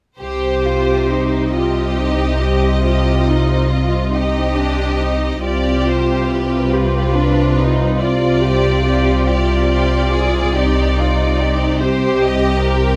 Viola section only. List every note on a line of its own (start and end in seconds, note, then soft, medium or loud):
0.20 1.49 G4 soft
1.53 1.97 F4 soft
1.97 2.40 D#4 soft
2.40 2.84 G4 soft
2.84 4.13 F4 soft
4.12 4.55 D#4 soft
4.56 5.00 D4 soft
5.00 5.45 D#4 soft
5.45 6.70 F4 soft
6.73 7.15 G4 soft
7.15 7.58 D4 soft
7.57 8.00 D#4 soft
7.99 8.41 F4 soft
8.41 8.83 G4 soft
8.84 9.25 G4 soft
9.26 10.53 F4 soft
10.53 11.80 D#4 soft
11.80 12.96 G4 soft